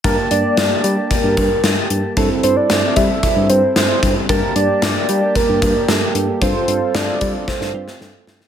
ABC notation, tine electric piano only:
X:1
M:4/4
L:1/16
Q:1/4=113
K:Gdor
V:1 name="Tine electric piano" clef=bass
G,, z G,, z G,, z G, z2 G,, G,, z G,, z G,, z | G,, z G,, z G,, z G, z2 G,, G,, z G,, z G,, z | G,, z G,, z G,, z G, z2 G,, G,, z G,, z G,, z | G,, z G,, z G,, z G, z2 G,, G,, z G,, z G,, z |]